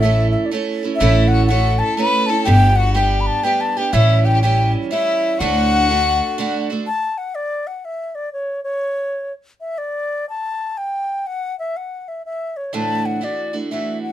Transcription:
Already playing: A1
0.00 A3 C#4 E5
0.04 E4 A4
0.31 E5
0.46 D5
0.51 A3 C#4 E4 A4
0.83 C#4 E4 A4
0.96 E5
1.00 A1 A2 A3 C#4 E4 A4
1.28 F#5
1.32 F#4
1.46 A3 C#4 F#5
1.50 E4 F#4 A4
1.79 A4 A5
1.95 A3 C#4 B5
1.99 E4 A4 B4
2.26 E4 A4 A5
2.31 C#4
2.44 G1 G3 B3 D4 G4 G5
2.76 F#4 F#5
2.94 G3 B3 D4 G4 G5
3.21 B5
3.27 A5
3.43 G3 B3 D4 G4 G5
3.61 A5
3.77 B3 D4 G4 G5
3.92 A1 A2 E3 G3 C#4 E4 G4 E5
4.24 G4 G5
4.29 G4
4.34 G4
4.42 E3 G3 C#4 G4 G5
4.90 E3 G3 C#4 E4 G4 E5
5.39 D2 A2 D3 A3 D4 F#4 F#5
5.89 D3 A3 D4 F#4
6.38 D3 A3 D4 F#4
6.70 D3 A3 D4 F#4
6.87 A5
7.18 F#5
7.35 D5
7.67 F#5
7.85 E5
8.15 D5
8.33 C#5
8.64 C#5
9.61 E5
9.78 D5
10.29 A5
10.77 G5
11.27 F#5
11.59 E5
11.77 F#5
12.08 E5
12.26 E5
12.57 C#5
12.73 D2 A2 E3 A3 D4 F#4 A5
13.06 F#5
13.21 E3 A3 D4 F#4 D5
13.53 E3 A3 D4 F#4
13.71 E3 A3 D4 F#4 E5
14.03 F#5

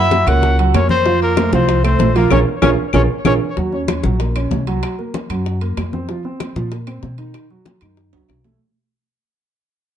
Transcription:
Already playing: F#2 F#3 E4 F#4 E5 F#5
0.11 high bongo, high conga, high timbale, low timbale
0.27 C#2 A#3 F#4 A#4 C#5 F#5, high bongo, high conga, low conga, high timbale, claves
0.42 high bongo, high conga, low conga
0.58 F#3 F#4 F#5, high conga, high timbale
0.74 F2 A#3 C#4 A#4 C#5, high bongo, low bongo, high conga, high timbale, low timbale, claves
0.89 C4 C5, high bongo, high conga
1.06 F3 F4 F5, high bongo, high conga
1.21 A#3 A#4, high conga
1.37 A3 A4 C5, high bongo, high conga, high timbale, low timbale, claves
1.52 C2 F3 C4 F4 C5 F5, high bongo, high conga
1.68 high bongo, high conga, high timbale
1.84 A3 C4 A4 C5, high bongo, high conga, high timbale, claves
1.99 A#1, high bongo, low bongo, high conga, low timbale
2.15 F3 A#3 F4 A#4 F5, high bongo, high conga, high timbale
2.30 A#1 C#4 F4 G#4 A#4 C#5, low bongo, high conga, high timbale, claves
2.62 A#1 C#4 F4 G#4 A#4 C#5, low bongo, high conga, high timbale, claves
2.93 A#1 C#4 F4 G#4 A#4 C#5, low bongo, high conga, high timbale, claves
3.25 A#1 C#4 F4 G#4 A#4 C#5, low bongo, high conga, high timbale, claves
3.57 D#2 F#3 F#4, high bongo, high conga
3.72 C#4 C#5, high conga
3.88 high bongo, high conga, high timbale, low timbale, claves
4.03 A#1 F#3 F#4, high bongo, high conga
4.20 A#3 A#4, high bongo, high conga, high timbale
4.35 C#4 C#5, high bongo, high conga, high timbale, claves
4.51 C2, high bongo, low bongo, high conga, low timbale
4.67 F#3 F#4, high bongo, high conga, high timbale
4.83 high bongo, high conga, high timbale, claves
4.99 A#3 A#4, high conga
5.14 high bongo, high conga, high timbale, low timbale
5.30 F#2 F#3 F#4, high bongo, high conga, high timbale, claves
5.46 high bongo, high conga
5.61 A#3 A#4, high conga, high timbale
5.77 F2, high bongo, low bongo, high conga, high timbale, low timbale, claves
5.93 C4 C5, high bongo, high conga
6.09 F3 F4, high bongo, high conga
6.25 C4 C5, high conga
6.40 high bongo, high conga, high timbale, low timbale, claves
6.56 A#2 F3 F4, high bongo, high conga
6.72 A#3 A#4, high bongo, high conga, high timbale
6.87 C4 C5, high bongo, high conga, high timbale, claves
7.03 B2, high bongo, low bongo, high conga, low timbale
7.18 D#3 D#4, high bongo, high conga, high timbale
7.34 high bongo, high conga, high timbale, claves
7.50 F#3 F#4, high conga
7.65 high bongo, high conga, high timbale, low timbale
7.81 F#2 D#3 D#4, high bongo, high conga, high timbale, claves
7.97 high bongo, high conga
8.13 C#2 F#3 F#4, high conga, high timbale
8.29 B1, high bongo, low bongo, high conga, high timbale, claves
8.44 A3 A4, high bongo, high conga, low timbale

